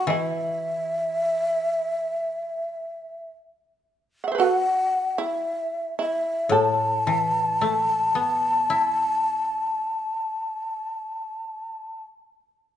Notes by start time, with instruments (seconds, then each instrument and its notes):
0.07 koto E3, shamisen E4, shakuhachi D#5
0.23 shakuhachi E5
4.24 shamisen E5 F#5
4.32 shamisen B4 C5
4.38 shamisen F#4 A4, shakuhachi F5
4.52 shakuhachi F#5
5.18 shamisen E4, shakuhachi E5
5.99 shamisen E4, shakuhachi E5
6.49 koto A2, shamisen A4, shakuhachi A5
7.07 koto E3
7.61 koto A3
8.15 koto B3
8.70 koto E4